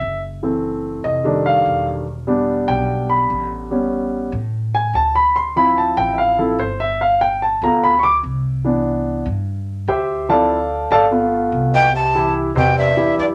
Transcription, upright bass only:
0.01 F#1
1.04 F1
1.66 E1
2.68 B1
3.30 A1
4.32 A2
4.93 D2
5.97 A1
6.59 G1
7.62 D2
8.23 C2
9.26 G2
9.88 D2
10.91 G1
11.52 C2
12.55 E2
13.18 F#2

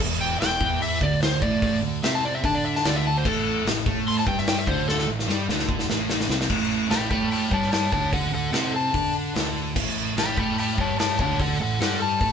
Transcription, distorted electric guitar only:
0.00 E2
0.39 E2
0.60 E3
1.01 D3
1.42 A2
1.83 D3
2.03 C4
2.43 D4
2.84 D3
3.25 A2
3.65 A2
3.86 A3
4.27 G3
4.66 D3
5.07 A2
5.28 G3
5.48 D3
5.88 A2
6.29 C3
6.49 A2
6.90 A2
7.10 A3
7.50 G3
7.91 D3
8.32 D3
8.52 C4
8.93 D4
9.34 D3
9.75 A2
10.17 A2
10.37 A3
10.77 G3
11.18 D3
11.60 A2
11.80 G3
12.21 A3

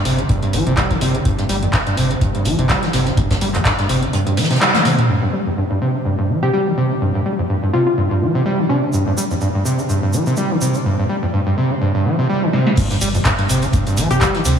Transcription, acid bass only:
0.05 C3
0.19 D3
0.29 G2
0.43 G2
0.53 F3
0.67 C3
0.77 G3
0.91 D3
1.01 C3
1.15 D3
1.25 G2
1.39 G2
1.49 G3
1.63 F2
1.73 G2
1.87 G2
1.97 C3
2.11 D3
2.21 G2
2.35 G2
2.45 F3
2.59 C3
2.69 G3
2.83 D3
2.93 C3
3.07 D3
3.17 G2
3.31 G2
3.41 G3
3.55 F2
3.66 G2
3.79 G2
3.90 C3
4.03 D3
4.13 G2
4.27 G2
4.37 F3
4.51 C3
4.61 G3
4.75 D3
4.85 C3
4.99 D3
5.09 G2
5.23 G2
5.33 G3
5.47 F2
5.57 G2
5.71 G2
5.81 C3
5.95 D3
6.05 G2
6.19 G2
6.29 F3
6.43 C3
6.54 G3
6.67 D3
6.78 C3
6.91 D3
7.02 G2
7.15 G2
7.26 G3
7.39 F2
7.50 G2
7.63 G2
7.74 C3
7.87 D3
7.98 G2
8.11 G2
8.21 F3
8.35 C3
8.45 G3
8.59 D3
8.69 C3
8.83 D3
8.93 G2
9.07 G2
9.18 G3
9.31 F2
9.41 G2
9.55 G2
9.65 C3
9.79 D3
9.89 G2
10.03 G2
10.13 F3
10.27 C3
10.37 G3
10.51 D3
10.61 C3
10.75 D3
10.85 G2
10.99 G2
11.09 G3
11.23 F2
11.33 G2
11.47 G2
11.57 C3
11.71 D3
11.81 G2
11.95 G2
12.05 F3
12.19 C3
12.29 G3
12.43 D3
12.54 C3
12.67 D3
12.77 G2
12.91 G2
13.02 G3
13.15 F2
13.25 G2
13.39 G2
13.49 C3
13.63 D3
13.73 G2
13.87 G2
13.97 F3
14.11 C3
14.21 G3
14.35 D3
14.45 C3

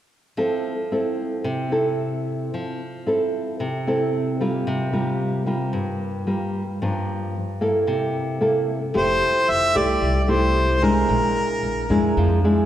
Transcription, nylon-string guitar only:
0.37 F3 C4 E4 A4
0.92 C4 E4 A4
1.44 C3
1.72 C4 E4 A4
2.54 F3
3.06 C4 E4 A4
3.60 C3
3.87 C4 E4 A4
4.41 G3 A#3 F4
4.67 C3
4.92 G3 A#3 F4
5.46 G3 A#3 F4
5.73 G2
6.27 G3 A#3 F4
6.82 G2 F3 A#3 D4
7.61 A#3 E4 A4
7.87 C3
8.41 A#3 E4 A4
8.94 F3 A3 E4 G4
9.75 A3 E4 G4
10.01 C3
10.28 A3 E4 G4
10.82 G#3 D4 E4
11.09 A#2
11.90 G#3 D4 E4
12.18 F3
12.44 G#3 D4 E4

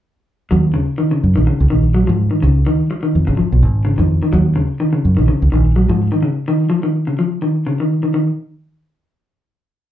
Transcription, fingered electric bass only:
0.52 D#2
1.23 F#2
1.37 A#1
1.60 C#2
1.72 A#1
2.09 G#2
2.43 C#2
3.15 F2
3.28 G#1
3.52 B1
3.63 G#1
3.99 F2
4.33 D#2
5.05 F#2
5.18 A#1
5.42 C#2
5.53 A#1
5.89 G#2

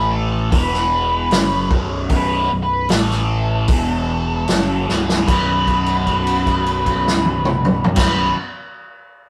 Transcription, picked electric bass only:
Already playing: A1
0.52 E1
1.32 F#1
1.71 B0
2.10 B0
2.51 B0
2.91 A1
3.69 E1
4.49 F#1
4.89 B0
5.28 B0
7.98 B0

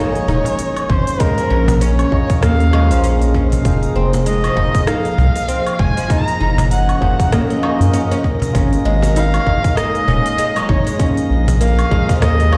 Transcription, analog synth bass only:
0.28 D#1
0.90 G#1
1.51 A#1
2.12 A#1
2.43 D#2
2.91 A#1
3.65 F1
3.96 F1
4.57 F1
5.18 C2
5.79 F1
6.41 F#1
7.02 F#1
7.80 F#2
8.55 G#1
8.85 G#1
9.47 G#1
10.08 D#1
10.69 G#1
11.30 A#1
11.91 A#1
12.22 D#2

